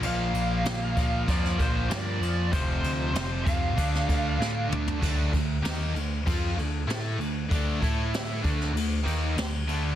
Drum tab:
CC |x-x-x-x-x-x-x-x-|x-x-x-x-x-x-----|x---------------|----------------|
RD |----------------|----------------|--x-x-x-x-x-x-x-|x-x-x-x-x-x-x-x-|
SD |----o----o--o---|----o----o--o---|----o-------o---|----o--o----o---|
T2 |----------------|--------------o-|----------------|----------------|
FT |----------------|---------------o|----------------|----------------|
BD |------o-o-o-----|o-----o-o-o-----|o-o-----o-------|o-o---o---------|